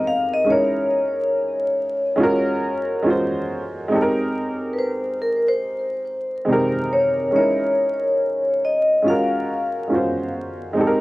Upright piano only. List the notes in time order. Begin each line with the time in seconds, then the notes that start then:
Already playing: G#3 C4 D#4 G4 A#4
0.45 G#3 C#4 D#4
0.50 E4 A#4
2.16 G#3 C#4 F4
2.22 F#4 A#4
3.02 G#3 C#4 F4
3.08 F#4 C5
3.88 G#3 C4 D#4
3.94 G4 A4
4.02 A#4
6.45 C3 G#3 D#4
6.51 G4 A#4
7.31 G#3 C#4 D#4
7.36 E4 A#4
9.02 G#3 C#4 F4
9.08 F#4 A#4
9.88 G#3 C#4 F4
9.93 F#4 C5
10.73 G#3 C4 D#4
10.79 G4 A4
10.87 A#4